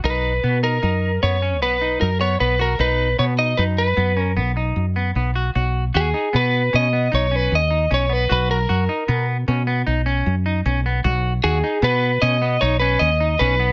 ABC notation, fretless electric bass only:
X:1
M:7/4
L:1/8
Q:1/4=153
K:B
V:1 name="Fretless electric bass" clef=bass
B,,,2 B,,2 F,,2 F,,2 B,,,2 F,,2 B,,,2 | B,,,2 B,,2 F,,2 F,,2 B,,,2 F,,2 B,,,2 | B,,,2 D,, z B,,2 B,,2 B,,,2 D,,2 B,,,2 | B,,,2 F,, z B,,2 B,,2 B,,,2 F,,2 B,,,2 |
B,,,2 D,, z B,,2 B,,2 B,,,2 D,,2 B,,,2 |]